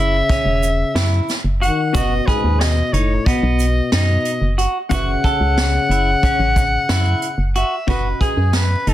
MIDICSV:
0, 0, Header, 1, 7, 480
1, 0, Start_track
1, 0, Tempo, 660066
1, 1411, Time_signature, 9, 3, 24, 8
1, 6499, End_track
2, 0, Start_track
2, 0, Title_t, "Soprano saxophone"
2, 0, Program_c, 0, 64
2, 0, Note_on_c, 0, 76, 118
2, 969, Note_off_c, 0, 76, 0
2, 1177, Note_on_c, 0, 78, 90
2, 1416, Note_on_c, 0, 75, 93
2, 1427, Note_off_c, 0, 78, 0
2, 1645, Note_on_c, 0, 71, 85
2, 1656, Note_off_c, 0, 75, 0
2, 1889, Note_on_c, 0, 75, 83
2, 1900, Note_off_c, 0, 71, 0
2, 2130, Note_on_c, 0, 73, 75
2, 2141, Note_off_c, 0, 75, 0
2, 2366, Note_on_c, 0, 75, 87
2, 2377, Note_off_c, 0, 73, 0
2, 2848, Note_off_c, 0, 75, 0
2, 2862, Note_on_c, 0, 75, 68
2, 3307, Note_off_c, 0, 75, 0
2, 3563, Note_on_c, 0, 78, 127
2, 5457, Note_off_c, 0, 78, 0
2, 5506, Note_on_c, 0, 76, 81
2, 5721, Note_off_c, 0, 76, 0
2, 5740, Note_on_c, 0, 71, 85
2, 5958, Note_off_c, 0, 71, 0
2, 5975, Note_on_c, 0, 68, 72
2, 6219, Note_on_c, 0, 71, 86
2, 6230, Note_off_c, 0, 68, 0
2, 6463, Note_on_c, 0, 69, 73
2, 6473, Note_off_c, 0, 71, 0
2, 6499, Note_off_c, 0, 69, 0
2, 6499, End_track
3, 0, Start_track
3, 0, Title_t, "Hollow-body jazz guitar"
3, 0, Program_c, 1, 26
3, 0, Note_on_c, 1, 71, 55
3, 0, Note_on_c, 1, 76, 65
3, 1384, Note_off_c, 1, 71, 0
3, 1386, Note_off_c, 1, 76, 0
3, 1403, Note_on_c, 1, 61, 57
3, 1407, Note_on_c, 1, 66, 62
3, 1411, Note_on_c, 1, 71, 57
3, 1415, Note_on_c, 1, 75, 70
3, 3537, Note_off_c, 1, 61, 0
3, 3539, Note_off_c, 1, 66, 0
3, 3540, Note_off_c, 1, 71, 0
3, 3543, Note_off_c, 1, 75, 0
3, 3561, Note_on_c, 1, 61, 64
3, 3566, Note_on_c, 1, 66, 50
3, 3571, Note_on_c, 1, 71, 54
3, 3573, Note_on_c, 1, 76, 64
3, 5696, Note_off_c, 1, 61, 0
3, 5698, Note_off_c, 1, 66, 0
3, 5701, Note_off_c, 1, 71, 0
3, 5702, Note_off_c, 1, 76, 0
3, 5723, Note_on_c, 1, 61, 55
3, 5729, Note_on_c, 1, 66, 50
3, 5733, Note_on_c, 1, 71, 50
3, 5735, Note_on_c, 1, 75, 54
3, 6499, Note_off_c, 1, 61, 0
3, 6499, Note_off_c, 1, 66, 0
3, 6499, Note_off_c, 1, 71, 0
3, 6499, Note_off_c, 1, 75, 0
3, 6499, End_track
4, 0, Start_track
4, 0, Title_t, "Clean electric guitar"
4, 0, Program_c, 2, 27
4, 0, Note_on_c, 2, 64, 67
4, 116, Note_off_c, 2, 64, 0
4, 220, Note_on_c, 2, 61, 78
4, 496, Note_off_c, 2, 61, 0
4, 694, Note_on_c, 2, 64, 71
4, 972, Note_off_c, 2, 64, 0
4, 1174, Note_on_c, 2, 66, 65
4, 1312, Note_off_c, 2, 66, 0
4, 1411, Note_on_c, 2, 66, 89
4, 1550, Note_off_c, 2, 66, 0
4, 1657, Note_on_c, 2, 68, 72
4, 1934, Note_off_c, 2, 68, 0
4, 2134, Note_on_c, 2, 63, 64
4, 2272, Note_off_c, 2, 63, 0
4, 2374, Note_on_c, 2, 59, 85
4, 2651, Note_off_c, 2, 59, 0
4, 2856, Note_on_c, 2, 63, 78
4, 3133, Note_off_c, 2, 63, 0
4, 3331, Note_on_c, 2, 66, 72
4, 3470, Note_off_c, 2, 66, 0
4, 3571, Note_on_c, 2, 66, 80
4, 3710, Note_off_c, 2, 66, 0
4, 3813, Note_on_c, 2, 69, 74
4, 4090, Note_off_c, 2, 69, 0
4, 4299, Note_on_c, 2, 64, 61
4, 4436, Note_off_c, 2, 64, 0
4, 4537, Note_on_c, 2, 61, 76
4, 4813, Note_off_c, 2, 61, 0
4, 5013, Note_on_c, 2, 64, 68
4, 5290, Note_off_c, 2, 64, 0
4, 5495, Note_on_c, 2, 66, 74
4, 5633, Note_off_c, 2, 66, 0
4, 5733, Note_on_c, 2, 66, 72
4, 5871, Note_off_c, 2, 66, 0
4, 5969, Note_on_c, 2, 68, 64
4, 6248, Note_off_c, 2, 68, 0
4, 6452, Note_on_c, 2, 63, 65
4, 6499, Note_off_c, 2, 63, 0
4, 6499, End_track
5, 0, Start_track
5, 0, Title_t, "Trombone"
5, 0, Program_c, 3, 57
5, 0, Note_on_c, 3, 49, 76
5, 978, Note_off_c, 3, 49, 0
5, 1184, Note_on_c, 3, 51, 78
5, 1430, Note_on_c, 3, 47, 78
5, 1441, Note_off_c, 3, 51, 0
5, 1667, Note_on_c, 3, 44, 69
5, 1677, Note_off_c, 3, 47, 0
5, 1904, Note_on_c, 3, 47, 63
5, 1915, Note_off_c, 3, 44, 0
5, 2146, Note_on_c, 3, 45, 64
5, 2157, Note_off_c, 3, 47, 0
5, 2383, Note_on_c, 3, 47, 79
5, 2394, Note_off_c, 3, 45, 0
5, 2856, Note_off_c, 3, 47, 0
5, 2860, Note_on_c, 3, 47, 64
5, 3306, Note_off_c, 3, 47, 0
5, 3569, Note_on_c, 3, 49, 91
5, 5460, Note_off_c, 3, 49, 0
5, 6499, End_track
6, 0, Start_track
6, 0, Title_t, "FM bass"
6, 0, Program_c, 4, 39
6, 0, Note_on_c, 4, 30, 102
6, 160, Note_off_c, 4, 30, 0
6, 330, Note_on_c, 4, 28, 93
6, 609, Note_off_c, 4, 28, 0
6, 692, Note_on_c, 4, 42, 97
6, 877, Note_off_c, 4, 42, 0
6, 1049, Note_on_c, 4, 30, 82
6, 1236, Note_off_c, 4, 30, 0
6, 1417, Note_on_c, 4, 30, 101
6, 1601, Note_off_c, 4, 30, 0
6, 1775, Note_on_c, 4, 39, 80
6, 2052, Note_off_c, 4, 39, 0
6, 2131, Note_on_c, 4, 30, 92
6, 2317, Note_off_c, 4, 30, 0
6, 2493, Note_on_c, 4, 35, 109
6, 2771, Note_off_c, 4, 35, 0
6, 2854, Note_on_c, 4, 42, 87
6, 3039, Note_off_c, 4, 42, 0
6, 3210, Note_on_c, 4, 30, 81
6, 3396, Note_off_c, 4, 30, 0
6, 3570, Note_on_c, 4, 30, 94
6, 3756, Note_off_c, 4, 30, 0
6, 3930, Note_on_c, 4, 37, 84
6, 4209, Note_off_c, 4, 37, 0
6, 4286, Note_on_c, 4, 30, 98
6, 4473, Note_off_c, 4, 30, 0
6, 4649, Note_on_c, 4, 33, 93
6, 4928, Note_off_c, 4, 33, 0
6, 5012, Note_on_c, 4, 42, 88
6, 5197, Note_off_c, 4, 42, 0
6, 5366, Note_on_c, 4, 30, 78
6, 5553, Note_off_c, 4, 30, 0
6, 5728, Note_on_c, 4, 30, 93
6, 5915, Note_off_c, 4, 30, 0
6, 6088, Note_on_c, 4, 42, 77
6, 6368, Note_off_c, 4, 42, 0
6, 6451, Note_on_c, 4, 30, 98
6, 6499, Note_off_c, 4, 30, 0
6, 6499, End_track
7, 0, Start_track
7, 0, Title_t, "Drums"
7, 213, Note_on_c, 9, 42, 68
7, 214, Note_on_c, 9, 36, 91
7, 286, Note_off_c, 9, 42, 0
7, 287, Note_off_c, 9, 36, 0
7, 457, Note_on_c, 9, 42, 50
7, 460, Note_on_c, 9, 82, 50
7, 530, Note_off_c, 9, 42, 0
7, 533, Note_off_c, 9, 82, 0
7, 696, Note_on_c, 9, 38, 127
7, 696, Note_on_c, 9, 42, 89
7, 769, Note_off_c, 9, 38, 0
7, 769, Note_off_c, 9, 42, 0
7, 934, Note_on_c, 9, 82, 18
7, 941, Note_on_c, 9, 38, 31
7, 941, Note_on_c, 9, 42, 57
7, 1007, Note_off_c, 9, 82, 0
7, 1013, Note_off_c, 9, 38, 0
7, 1013, Note_off_c, 9, 42, 0
7, 1183, Note_on_c, 9, 42, 55
7, 1256, Note_off_c, 9, 42, 0
7, 1416, Note_on_c, 9, 36, 109
7, 1418, Note_on_c, 9, 82, 48
7, 1421, Note_on_c, 9, 42, 73
7, 1488, Note_off_c, 9, 36, 0
7, 1490, Note_off_c, 9, 82, 0
7, 1494, Note_off_c, 9, 42, 0
7, 1655, Note_on_c, 9, 36, 70
7, 1660, Note_on_c, 9, 42, 59
7, 1728, Note_off_c, 9, 36, 0
7, 1732, Note_off_c, 9, 42, 0
7, 1897, Note_on_c, 9, 38, 102
7, 1897, Note_on_c, 9, 42, 76
7, 1969, Note_off_c, 9, 38, 0
7, 1969, Note_off_c, 9, 42, 0
7, 2135, Note_on_c, 9, 42, 58
7, 2208, Note_off_c, 9, 42, 0
7, 2373, Note_on_c, 9, 36, 93
7, 2380, Note_on_c, 9, 42, 77
7, 2446, Note_off_c, 9, 36, 0
7, 2452, Note_off_c, 9, 42, 0
7, 2613, Note_on_c, 9, 82, 44
7, 2617, Note_on_c, 9, 42, 58
7, 2686, Note_off_c, 9, 82, 0
7, 2690, Note_off_c, 9, 42, 0
7, 2851, Note_on_c, 9, 38, 122
7, 2851, Note_on_c, 9, 42, 94
7, 2924, Note_off_c, 9, 38, 0
7, 2924, Note_off_c, 9, 42, 0
7, 3091, Note_on_c, 9, 42, 61
7, 3095, Note_on_c, 9, 82, 15
7, 3164, Note_off_c, 9, 42, 0
7, 3168, Note_off_c, 9, 82, 0
7, 3333, Note_on_c, 9, 42, 58
7, 3406, Note_off_c, 9, 42, 0
7, 3571, Note_on_c, 9, 36, 98
7, 3572, Note_on_c, 9, 42, 75
7, 3573, Note_on_c, 9, 82, 47
7, 3644, Note_off_c, 9, 36, 0
7, 3645, Note_off_c, 9, 42, 0
7, 3645, Note_off_c, 9, 82, 0
7, 3811, Note_on_c, 9, 36, 69
7, 3814, Note_on_c, 9, 42, 55
7, 3884, Note_off_c, 9, 36, 0
7, 3887, Note_off_c, 9, 42, 0
7, 4054, Note_on_c, 9, 38, 97
7, 4054, Note_on_c, 9, 42, 71
7, 4127, Note_off_c, 9, 38, 0
7, 4127, Note_off_c, 9, 42, 0
7, 4298, Note_on_c, 9, 42, 46
7, 4370, Note_off_c, 9, 42, 0
7, 4531, Note_on_c, 9, 36, 86
7, 4531, Note_on_c, 9, 42, 67
7, 4603, Note_off_c, 9, 42, 0
7, 4604, Note_off_c, 9, 36, 0
7, 4771, Note_on_c, 9, 36, 74
7, 4772, Note_on_c, 9, 42, 51
7, 4777, Note_on_c, 9, 82, 39
7, 4844, Note_off_c, 9, 36, 0
7, 4845, Note_off_c, 9, 42, 0
7, 4850, Note_off_c, 9, 82, 0
7, 5011, Note_on_c, 9, 38, 117
7, 5011, Note_on_c, 9, 42, 90
7, 5084, Note_off_c, 9, 38, 0
7, 5084, Note_off_c, 9, 42, 0
7, 5248, Note_on_c, 9, 42, 56
7, 5257, Note_on_c, 9, 82, 16
7, 5321, Note_off_c, 9, 42, 0
7, 5330, Note_off_c, 9, 82, 0
7, 5492, Note_on_c, 9, 42, 51
7, 5565, Note_off_c, 9, 42, 0
7, 5727, Note_on_c, 9, 42, 64
7, 5729, Note_on_c, 9, 36, 89
7, 5800, Note_off_c, 9, 42, 0
7, 5802, Note_off_c, 9, 36, 0
7, 5967, Note_on_c, 9, 42, 51
7, 5968, Note_on_c, 9, 36, 60
7, 6040, Note_off_c, 9, 42, 0
7, 6041, Note_off_c, 9, 36, 0
7, 6204, Note_on_c, 9, 38, 89
7, 6204, Note_on_c, 9, 42, 65
7, 6277, Note_off_c, 9, 38, 0
7, 6277, Note_off_c, 9, 42, 0
7, 6449, Note_on_c, 9, 42, 53
7, 6499, Note_off_c, 9, 42, 0
7, 6499, End_track
0, 0, End_of_file